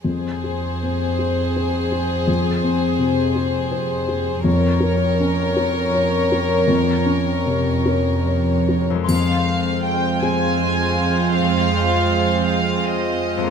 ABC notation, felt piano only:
X:1
M:6/8
L:1/8
Q:3/8=54
K:Fm
V:1 name="Felt piano"
F,, A C A c A | F,, C C, A c A | F,, B D B d B | F,, D C, B d B |
F,,3 [CAc]3- | [CAc]6 |]